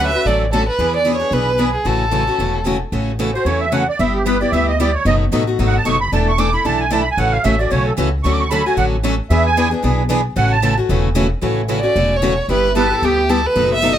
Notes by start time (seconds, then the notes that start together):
Already playing: D2 B4
0.00 F#3 A3 C#4 F#4
0.08 E5
0.15 A3 C#4 F#4
0.25 A1 D3 F#3 A3 C#4 F#4 A4 D5
0.53 D3 F#3 A3 C#4 F#4 A4
0.70 B4
0.79 E2 E3 B3 D4 G#4 B4
0.97 D5
1.05 E3 B3 D4 G#4 B4
1.16 G#4 C#5
1.21 B3 D4
1.31 B1 E3 B3 D4 G#4 B4
1.58 E3 B3 D4 G#4 B4
1.74 G#4
1.85 A1 C#3 E3 A3 C#4 F#4 A4
2.11 C#3 E3 A3 C#4 F#4 A4
2.27 A3 C#4 F#4
2.39 E1 C#3 E3 A3 C#4 F#4 A4
2.65 C#3 E3 A3 C#4 F#4 A4
2.92 A1 C#3 E3 A3 C#4 F#4 A4
3.19 C#3 E3 A3 C#4 F#4 A4
3.34 A3 C#4 F#4 C5
3.45 E2 C#3 E3 A3 C#4 F#4 A4 C#5
3.61 E5
3.72 C#3 E3 A3 C#4 F#4 A4 F#5
3.89 D5
3.99 G1 G3 B3 E4 G4 E5
4.14 G4
4.26 G3 B3 E4 G4 B4
4.41 B3 E4 G4 D5
4.52 D2 G3 B3 E4 G4 E5
4.69 D#5
4.80 G3 B3 E4 G4 D5
4.94 C#5
5.05 F#1 B2 F#3 A3 B3 D#4 F#4 A4 D#5
5.32 A1 B2 F#3 A3 B3 D#4 F#4 A4
5.47 A3 D#4 F#4
5.59 G#1 B2 F#3 A3 B3 D#4 F#4 A4
5.67 F#5
5.77 A5
5.85 F#1 B2 F#3 A3 B3 D#4 F#4 A4 C#6
6.01 B5
6.12 E1 E3 A3 D4 E4 A4 A5
6.28 C#6
6.38 E3 A3 D4 E4 A4 D6
6.53 D4 E4 A4 B5
6.65 B1 E3 A3 D4 E4 A4 A5
6.80 G#5
6.90 E3 A3 D4 E4 A4 A5
7.01 B5
7.11 G#5
7.17 A1 C#3 E3 A3 C#4 F#4 A4 F#5
7.32 F5
7.44 A1 C#3 E3 A3 C#4 F#4 A4 E5
7.59 A3 C#4 F#4 D5
7.70 B1 C#3 E3 A3 C#4 F#4 A4 C#5
7.86 A4
7.98 C#2 C#3 E3 A3 C#4 F#4 A4
8.23 D2 D3 F#3 A3 C#4 F#4 A4 C#6
8.32 D6
8.40 C#6
8.50 D3 F#3 A3 C#4 F#4 A4 B5
8.65 A3 C#4 F#4 G#5
8.77 A1 D3 F#3 A3 C#4 F#4 A4 F#5
9.04 D3 F#3 A3 C#4 F#4 A4
9.30 E2 E3 B3 D4 G#4 B4 E5
9.46 G#5
9.57 E3 B3 D4 G#4 B4
9.71 B3 D4 G#4
9.83 B1 E3 B3 D4 G#4 B4
10.09 E3 B3 D4 G#4 B4
10.36 A1 C#3 E3 A3 C#4 F#4 A4 F#5
10.52 A5
10.63 C#3 E3 A3 C#4 F#4 A4
10.77 A3 C#4 F#4
10.89 E1 C#3 E3 A3 C#4 F#4 A4
11.15 C#3 E3 A3 C#4 F#4 A4
11.42 A1 C#3 E3 A3 C#4 F#4 A4
11.68 C#3 E3 A3 C#4 F#4 A4
11.81 A3 C#4 F#4 D5
11.96 E1 C#3 E3 A3 C#4 F#4 A4
12.16 C#5
12.22 C#3 E3 A3 C#4 F#4 A4
12.48 G1 G3 B3 E4 G4 B4
12.75 G3 B3 E4 G4 A4 B4
12.90 B3 E4 G4
12.97 A4
13.01 D2 G3 B3 E4 G4
13.05 G4
13.29 G3 B3 E4 G4 A4
13.46 B4
13.56 F#1 B2 F#3 A3 B3 D#4 F#4 A4
13.75 E5
13.82 B2 F#3 A3 B3 D#4 F#4 A4
13.93 D#5